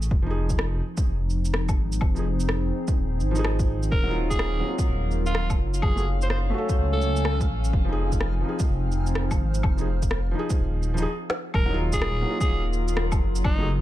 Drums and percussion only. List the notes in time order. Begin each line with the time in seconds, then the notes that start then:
0.02 shaker
0.11 kick
0.50 kick, shaker
0.59 cross-stick
0.97 kick, shaker
1.30 shaker
1.45 shaker
1.54 cross-stick
1.69 kick, low woodblock, shaker
1.92 shaker
2.01 kick, low woodblock
2.16 shaker
2.40 shaker
2.49 cross-stick
2.88 kick, shaker
3.20 shaker
3.35 shaker
3.44 cross-stick, low woodblock
3.59 kick, shaker
3.83 shaker
3.92 kick
4.31 kick, shaker
4.39 cross-stick
4.79 kick, shaker
5.11 shaker
5.26 shaker
5.35 cross-stick
5.50 kick, low woodblock, shaker
5.74 shaker
5.82 kick, low woodblock
5.98 shaker
6.22 shaker
6.30 cross-stick
6.69 kick, shaker
7.01 shaker
7.16 shaker
7.25 cross-stick, low woodblock
7.41 kick, shaker
7.64 shaker
7.73 kick
8.12 kick, shaker
8.21 cross-stick
8.59 kick, shaker
8.92 shaker
9.07 shaker
9.15 cross-stick
9.31 kick, low woodblock, shaker
9.54 shaker
9.63 kick, low woodblock
9.78 shaker
10.02 kick, shaker
10.11 cross-stick
10.50 kick, shaker
10.83 shaker
10.97 shaker
11.30 snare
11.54 kick, low woodblock
11.92 kick, shaker
12.02 cross-stick
12.41 kick, shaker
12.73 shaker
12.88 shaker
12.97 cross-stick
13.12 kick, low woodblock, shaker
13.36 shaker
13.44 kick, low woodblock